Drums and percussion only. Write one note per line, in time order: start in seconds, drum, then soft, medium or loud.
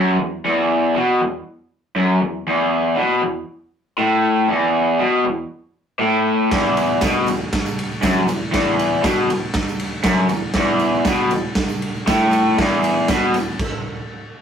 6.51 kick loud
6.51 snare medium
6.51 ride medium
6.51 tambourine soft
6.77 ride medium
6.77 tambourine medium
6.90 tambourine soft
7.01 kick loud
7.01 snare loud
7.01 ride medium
7.01 tambourine loud
7.26 ride medium
7.26 tambourine medium
7.53 kick medium
7.53 snare loud
7.53 ride medium
7.66 tambourine medium
7.78 ride medium
7.78 tambourine soft
7.91 tambourine soft
8.02 kick loud
8.02 snare loud
8.02 ride medium
8.02 tambourine loud
8.18 tambourine soft
8.28 ride medium
8.28 tambourine medium
8.54 kick medium
8.54 snare medium
8.54 ride medium
8.54 tambourine soft
8.79 ride medium
8.79 tambourine medium
8.94 tambourine soft
9.04 kick loud
9.04 snare loud
9.04 ride loud
9.04 tambourine medium
9.30 ride medium
9.54 kick loud
9.54 snare loud
9.54 ride medium
9.68 tambourine medium
9.79 ride medium
9.79 tambourine soft
9.93 tambourine soft
10.04 kick loud
10.04 snare loud
10.04 ride medium
10.04 tambourine medium
10.29 ride medium
10.29 tambourine medium
10.54 kick medium
10.54 snare loud
10.54 ride medium
10.54 tambourine soft
10.79 ride medium
10.79 tambourine medium
10.93 tambourine soft
11.05 kick loud
11.05 snare loud
11.05 ride medium
11.05 tambourine medium
11.30 ride medium
11.30 tambourine medium
11.55 kick medium
11.55 snare loud
11.55 ride medium
11.69 tambourine medium
11.81 ride medium
11.81 tambourine soft
11.95 tambourine soft
12.07 kick loud
12.07 snare loud
12.07 ride medium
12.07 tambourine loud
12.31 ride medium
12.31 tambourine medium
12.58 kick loud
12.58 snare loud
12.58 ride medium
12.58 tambourine soft
12.69 tambourine soft
12.82 ride medium
12.82 tambourine medium
12.97 tambourine soft
13.08 kick loud
13.08 snare loud
13.08 ride medium
13.08 tambourine loud
13.24 tambourine soft
13.34 ride medium
13.34 tambourine medium
13.51 tambourine soft
13.59 kick medium
13.59 crash medium